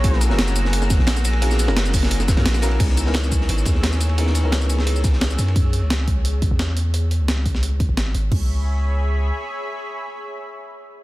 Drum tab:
CC |----------------|----------------|x---------------|----------------|
RD |x-x-x-x-x-x-x-xx|x-x-xxx-x-xxxxxx|x-x-x-x-x-x-x-xx|x-x-xxx-x-x-x-xx|
HH |x-x-x-x-x-x-x-x-|x-x-x-o-x-x-x-x-|x-x-x-x-x-x-x-x-|x-x-x-x-x-x-x-x-|
SH |--x--xx--xx--xx-|-xx--xx--xx--xx-|--x--xx--xx--xx-|--x--xx--xx--xx-|
SD |-o-oo--o-ooooo--|-oooo--o-oooooo-|-o-oo--o--oooo--|-oo-o--o--ooo---|
FT |----------------|----------------|----------------|----------------|
BD |o---------o-----|------o---o-----|o-----o---o-----|----------o-----|

CC |----------------|----------------|x---------------|----------------|
RD |----------------|----------------|----------------|----------------|
HH |x-x-x-x-x-x-x-x-|x-x-x-x-x-x-x-x-|----------------|----------------|
SH |----------------|----------------|----------------|----------------|
SD |----o-------o---|----o--o----o---|----------------|----------------|
FT |----------------|----------------|o---------------|----------------|
BD |o-----o---o-----|------o---o-----|o---------------|----------------|